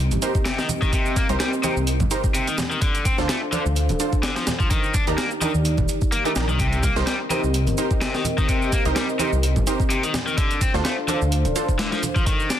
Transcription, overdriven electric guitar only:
0.46 C3
0.58 D#3
0.82 D#3
0.93 C3
1.16 A#3
1.40 G3
1.64 C3
2.34 C3
2.47 D#3
2.71 D#3
2.82 D3
3.05 C4
3.29 A3
3.52 D3
4.23 D3
4.36 F3
4.60 F3
4.71 D#3
4.94 D4
5.18 A#3
5.42 D#3
6.12 A#3
6.25 A3
6.49 D#3
6.60 C3
6.83 A#3
7.07 G3
7.31 C3
8.02 C3
8.14 D#3
8.38 D#3
8.49 C3
8.72 A#3
8.96 G3
9.20 C3
9.90 C3
10.03 D#3
10.27 D#3
10.38 D3
10.61 C4
10.85 A3
11.08 D3
11.79 D3
11.92 F3
12.16 F3
12.27 D#3
12.50 D4

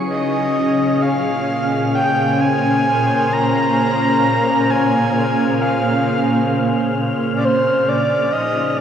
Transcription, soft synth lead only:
0.09 D#5
1.02 F5
1.95 G5
2.40 G#5
3.33 A#5
4.70 G#5
5.62 F5
7.36 D5
7.45 C5
7.89 D5
8.32 D#5
8.70 D#5
8.78 D5

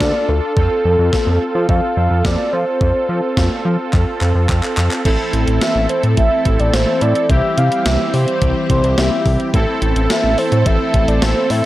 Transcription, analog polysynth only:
Already playing: D4 F4 A4
0.57 C4 F4 A4
5.05 C4 E4 A4
7.30 C4 E4 G4
9.54 C4 E4 A4

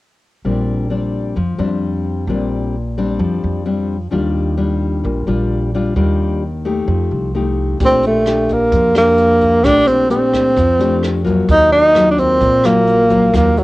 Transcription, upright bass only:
0.45 A#1
1.37 F2
1.59 F2
2.27 A#1
3.19 F2
3.44 F2
4.12 D#2
5.05 A#1
5.28 A#1
5.96 D#2
6.88 F2
7.11 C2
7.80 A#1
8.72 F2
9.64 A#1
10.57 F2
11.48 D#2
12.41 A#1
13.34 D#2

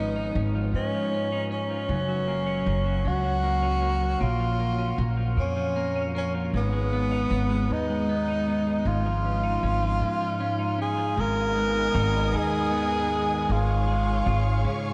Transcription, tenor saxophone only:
Already playing: D#4
0.75 C#4
1.53 C#4
3.08 F#4
4.23 F4
5.40 C#4
6.17 C#4
6.57 B3
7.72 D#4
8.88 F4
10.82 G#4
11.20 A#4
12.36 G#4
13.52 F4

